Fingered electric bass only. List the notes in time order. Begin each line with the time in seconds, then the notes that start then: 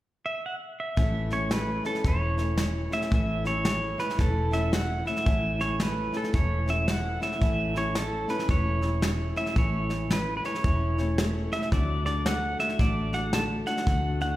0.97 A1
2.05 E1
3.12 A1
4.19 E1
5.27 A1
6.34 E1
7.42 A1
8.49 E1
9.56 A1
10.64 E1
11.72 D2
12.79 A1
13.87 D2